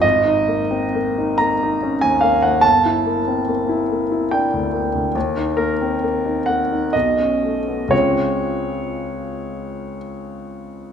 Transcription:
<<
  \new Staff \with { instrumentName = "Grand piano" } { \time 3/4 \key des \lydian \tempo 4 = 67 ees''4. bes''8. aes''16 f''16 ges''16 | a''2 g''4 | r8 bes'4 ges''8 ees''4 | des''2 r4 | }
  \new Staff \with { instrumentName = "Grand piano" } { \time 3/4 \key des \lydian aes,,16 ees'16 bes16 c'16 bes16 ees'16 bes16 ees'16 des'16 ees,16 bes16 ees,16 | g,,16 e'16 bes16 c'16 bes16 e'16 bes16 e'16 d'16 d,16 bes16 d,16 | ees,16 ees'16 bes16 c'16 bes16 ees'16 bes16 ees'16 ces,16 des'16 a16 ces'16 | <des, aes c' des' f'>2. | }
>>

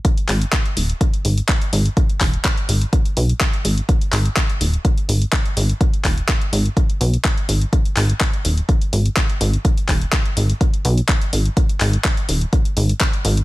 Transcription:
<<
  \new Staff \with { instrumentName = "Analog synth bass" } { \clef bass \time 4/4 \key gis \minor \tempo 4 = 125 r8 gis,,8 r8 dis,,8 r8 gis,,8 r8 gis,,8 | r8 dis,,8 r8 gis,,8 r8 b,,8 r8 gis,,8 | r8 gis,,8 r8 dis,,8 r8 gis,,8 r8 gis,,8 | r8 dis,,8 r8 gis,,8 r8 b,,8 r8 gis,,8 |
r8 gis,,8 r8 dis,,8 r8 gis,,8 r8 gis,,8 | r8 dis,,8 r8 gis,,8 r8 b,,8 r8 gis,,8 | r8 gis,,8 r8 dis,,8 r8 gis,,8 r8 gis,,8 | }
  \new DrumStaff \with { instrumentName = "Drums" } \drummode { \time 4/4 <hh bd>16 hh16 <hc hho>16 hh16 <hc hh bd>16 hh16 hho16 hh16 <hh bd>16 hh16 hho16 hh16 <hc hh bd>16 hh16 hho16 hh16 | <hh bd>16 hh16 <hc hho bd>16 hh16 <hc hh bd>16 hh16 hho16 hh16 <hh bd>16 hh16 hho16 hh16 <hc hh bd>16 hh16 hho16 hh16 | <hh bd>16 hh16 <hc hho>16 hh16 <hc hh bd>16 hh16 hho16 hh16 <hh bd>16 hh16 hho16 hh16 <hc hh bd>16 hh16 hho16 hh16 | <hh bd>16 hh16 <hc hho bd>16 hh16 <hc hh bd>16 hh16 hho16 hh16 <hh bd>16 hh16 hho16 hh16 <hc hh bd>16 hh16 hho16 hh16 |
<hh bd>16 hh16 <hc hho>16 hh16 <hc hh bd>16 hh16 hho16 hh16 <hh bd>16 hh16 hho16 hh16 <hc hh bd>16 hh16 hho16 hh16 | <hh bd>16 hh16 <hc hho bd>16 hh16 <hc hh bd>16 hh16 hho16 hh16 <hh bd>16 hh16 hho16 hh16 <hc hh bd>16 hh16 hho16 hh16 | <hh bd>16 hh16 <hc hho>16 hh16 <hc hh bd>16 hh16 hho16 hh16 <hh bd>16 hh16 hho16 hh16 <hc hh bd>16 hh16 hho16 hh16 | }
>>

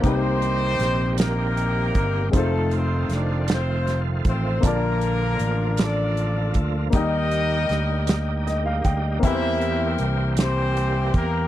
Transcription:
<<
  \new Staff \with { instrumentName = "Horn section" } { \time 6/8 \key c \dorian \tempo 4. = 52 << { <c' c''>4. <bes bes'>4. | <a a'>8 <c' c''>8 <d' d''>8 <c' c''>8 r8 <c' c''>8 | <bes bes'>4. <d' d''>4 r8 | <ees' ees''>2 r4 |
<e' e''>4 r8 <c' c''>4 <bes bes'>8 | } \\ { <ees' g'>4. <ees' g'>4. | <c' ees'>4. r4. | <d' f'>4. <f' a'>4. | <g' bes'>2 r4 |
<g' bes'>4. g'4. | } >> }
  \new Staff \with { instrumentName = "Upright piano" } { \time 6/8 \key c \dorian <bes c' ees' g' ces'' c''>2. | <aes a c' ees' f' c''>2. | <bes d' f' d'' a''>2. | <bes ees' g' ees''>2. |
<bes c' e' g' ces'' c''>2. | }
  \new Staff \with { instrumentName = "Upright piano" } { \clef bass \time 6/8 \key c \dorian c4. r4. | r2. | d4. r4. | g4. r8 ees''16 f''16 g''8 |
e4. r4. | }
  \new Staff \with { instrumentName = "Tonewheel organ" } { \time 6/8 \key c \dorian <ees g bes c' g'>2. | <ees f a c' f'>2. | <d f bes e' f'>2. | <g bes ees' g'>2. |
<e g bes c' g'>2. | }
  \new Staff \with { instrumentName = "Fingered electric bass" } { \clef bass \time 6/8 \key c \dorian c,4 bes,,4. g,,8 | f,,4 f,,4. a,,8 | bes,,4 a,,4. d,8 | ees,4 d,4. d,8 |
e,4 c,4. e,8 | }
  \new DrumStaff \with { instrumentName = "Drums" } \drummode { \time 6/8 <hh bd>8 hh8 <hh sn>8 <hh sn>8 hh8 <hh bd>8 | <hh bd>8 hh8 <hh sn>8 <hh sn>8 <hh sn>8 <hh bd>8 | <hh bd>8 hh8 hh8 <hh sn>8 hh8 <hh bd>8 | <hh bd>8 hh8 <hh sn>8 <hh sn>8 <hh sn>8 <hh bd>8 |
<hh bd>8 hh8 hh8 <hh sn>8 hh8 <hh bd>8 | }
>>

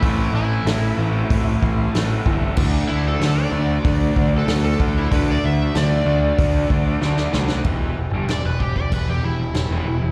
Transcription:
<<
  \new Staff \with { instrumentName = "Electric slide guitar" } { \time 4/4 \key e \minor \tempo 4 = 95 e'8 e'2. r8 | r8 e'16 a'16 a'16 d''4. a'8 a'8 e'16 | b'16 d''16 e''8 d''2 r4 | r4 d''16 b'16 g'16 d''16 b'16 g'16 e'4. | }
  \new Staff \with { instrumentName = "Transistor combo organ" } { \time 4/4 \key e \minor << { r2 r8 c'''8 a''16 fis''16 e''8 | r1 | r1 | r1 | } \\ { <c' e' a'>8 <c' e' a'>8 <c' e' a'>8 <c' e' a'>8 <c' e' fis'>8 <c' e' g'>8 <c' e' fis'>8 <c' e' a'>8 | <d' fis' a'>8 <d' fis' a'>8 <d' fis' a'>8 <d' fis' c''>8 <d' fis' a'>8 <d' fis' c''>8 <d' fis' a'>8 <d' fis' a'>8 | <d' fis' b'>8 <d' fis' a'>8 <d' fis' a'>8 <d' fis' a'>8 <d' fis' a'>8 <d' fis' c''>8 <d' fis' b'>8 <d' fis' b'>8 | <e' g' b'>8 <e' g' a'>8 <e' g' b'>8 <e' g' b'>8 <e' g' a'>8 <e' g' b'>8 <e' g' a'>8 <e' g' b'>8 | } >> }
  \new Staff \with { instrumentName = "Overdriven electric guitar" } { \clef bass \time 4/4 \key e \minor <a, e a>4 <a, e a>8 <a, e a>8 <a, e a>4 <a, e a>8 <a, e a>8 | <d a d'>4 <d a d'>8 <d a d'>8 <d a d'>4 <d a d'>8 <d a d'>8 | <d a d'>4 <d a d'>8 <d a d'>8 <d a d'>4 <d a d'>8 <d a d'>8 | <e, e>8 e,16 <g, g>16 e,16 e,8 e,16 e,16 e,16 e,16 e,16 e,16 <e, e>16 e,16 e,16 | }
  \new Staff \with { instrumentName = "Picked electric bass" } { \clef bass \time 4/4 \key e \minor a,,8 a,,8 a,,8 a,,8 a,,8 a,,8 a,,8 g,,8 | d,8 d,8 d,8 d,8 d,8 d,8 d,8 d,8 | d,8 d,8 d,8 d,8 d,8 d,8 d,8 c,8 | e,,8 e,,16 g,,16 e,,16 e,,8 e,,16 e,,16 e,,16 e,,16 e,,16 e,,16 e,,16 e,,16 e,,16 | }
  \new DrumStaff \with { instrumentName = "Drums" } \drummode { \time 4/4 <hho bd>4 <hho sn>4 <hho bd>8 bd8 <hho sn>8 bd8 | <cymc bd>4 <hho sn>4 <hho bd>8 bd8 <hho sn>8 bd8 | <hho bd>4 <hho sn>4 <hho bd>8 bd8 sn16 sn16 sn16 sn16 | <cymc bd>4 <cymc sn>8 bd16 bd16 <cymc bd>4 <cymc sn>4 | }
>>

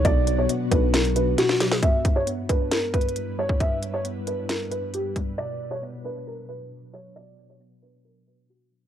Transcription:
<<
  \new Staff \with { instrumentName = "Felt piano" } { \time 4/4 \key g \lydian \tempo 4 = 135 d''8. cis''16 r8 b'8 ais'8 b'8 fis'8 r8 | e''8. cis''16 r8 b'8 ais'8 b'4 cis''8 | e''8. cis''16 r8 b'8 ais'8 b'8 g'8 r8 | d''8. cis''16 r8 b'8 ais'8 b'4 cis''8 |
d''8. cis''16 r8 b'8 ais'8 b'8 fis'8 r8 | }
  \new Staff \with { instrumentName = "Ambient pad" } { \time 4/4 \key g \lydian << { fis'1 | b'1~ | b'1~ | b'1~ |
b'1 | } \\ { <b d'>1 | <g, g e'>1~ | <g, g e'>1 | <b, fis d'>1~ |
<b, fis d'>1 | } >> }
  \new Staff \with { instrumentName = "Tine electric piano" } { \clef bass \time 4/4 \key g \lydian <b, fis>4 b8 d'4 b,4 fis8 | g,4 b8 d'4 g,4 g8 | g,4 b8 d'4 g,4 g8 | r4 b8 d'4 b,4 fis8 |
b,4 b8 d'4 b,4 fis8 | }
  \new Staff \with { instrumentName = "808-style bass" } { \clef bass \time 4/4 \key g \lydian b,,4 r8 b,,4. r4 | r1 | r1 | r1 |
r1 | }
  \new DrumStaff \with { instrumentName = "Drums" } \drummode { \time 4/4 <hh bd>8 hh8 hh8 <hh bd>8 <hh sn>16 hh16 hh8 <hh sn>16 sn16 <hh sn>16 sn16 | <hh bd>8 <hh bd>8 hh8 <hh bd>8 \tuplet 3/2 { <hh sn>16 r16 r16 <hh bd>16 hh16 hh16 } hh8. bd16 | <hh bd>8 hh8 hh8 hh8 <hh sn>8 hh8 hh8 <hh bd>8 | r4 r4 r4 r4 |
r4 r4 r4 r4 | }
>>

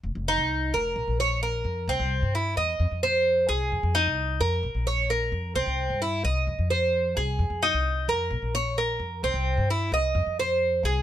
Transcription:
<<
  \new Staff \with { instrumentName = "Cuban tres" } { \time 4/4 \key f \minor \tempo 4 = 130 r8 ees'4 bes'4 des''8 bes'4 | c'4 e'8 ees''4 c''4 aes'8~ | aes'8 ees'4 bes'4 des''8 bes'4 | c'4 e'8 ees''4 c''4 aes'8~ |
aes'8 ees'4 bes'4 des''8 bes'4 | c'4 e'8 ees''4 c''4 aes'8 | }
  \new Staff \with { instrumentName = "Upright bass" } { \clef bass \time 4/4 \key f \minor f,,16 f,,8 c,8. f,,8 bes,,16 bes,,4~ bes,,16 f,8 | c,16 c,8 g,8. e,8 f,16 f,4~ f,16 c,8 | f,16 f,8 c,8. f,8 bes,,16 bes,,4~ bes,,16 f,8 | c,16 c,8 g,8. c,8 f,16 f,4~ f,16 c,8 |
f,16 f,8 c,8. f,8 bes,,16 bes,,4~ bes,,16 f,8 | c,16 c,8 g,8. c,8 f,16 f,4~ f,16 c,8 | }
>>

